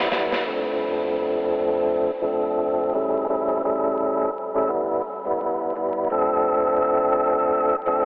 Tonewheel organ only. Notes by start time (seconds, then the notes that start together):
0.11 G3 B3 E4
0.46 F3 A3 C4 D4 A4
2.21 F3 A3 C4 D4 A4
2.93 C#3 G3 A3 C#4 E4 A4
3.28 C#3 G3 A3 C#4 E4 A4
3.63 C#3 G3 A3 C#4 E4 A4
4.54 C#3 G3 A3 C#4 E4 A4
4.67 G3 B3 E4
5.25 G3 B3 E4
5.40 G3 B3 E4
5.76 G3 B3 E4
6.10 F3 A3 C4 D4 A4
7.86 F3 A3 C4 D4 A4